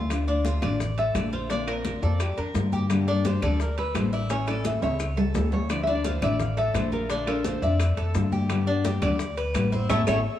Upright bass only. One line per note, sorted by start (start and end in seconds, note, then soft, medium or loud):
0.00 0.57 D2 medium
0.62 1.11 A1 medium
1.15 1.97 A#1 medium
2.02 2.35 F2 loud
2.37 2.54 F2 medium
2.55 3.37 G2 medium
3.42 3.91 D2 medium
3.95 4.77 A1 medium
4.82 5.31 C#2 medium
5.35 6.16 D2 medium
6.22 6.71 A1 medium
6.74 7.56 A#1 medium
7.62 7.95 F2 medium
7.97 8.13 F2 medium
8.15 8.96 G2 medium
9.02 9.51 D2 medium
9.54 9.87 A1 medium
9.89 10.03 A1 loud
10.07 10.20 A1 loud